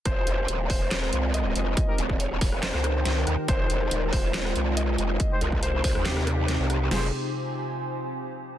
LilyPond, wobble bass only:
\new Staff \with { instrumentName = "Wobble bass" } { \clef bass \time 4/4 \key f \minor \tempo 4 = 140 f,,8 f,,8 ees,,4. c,4 f,,8 | r8 ees,,4 ees,,16 f,,8 des,8. des,8 ees,16 r16 | f,,8 f,,8 ees,,4. c,4 f,,8 | r8 c,4 c,16 ees,4. c,8. |
f,,8 r2. r8 | }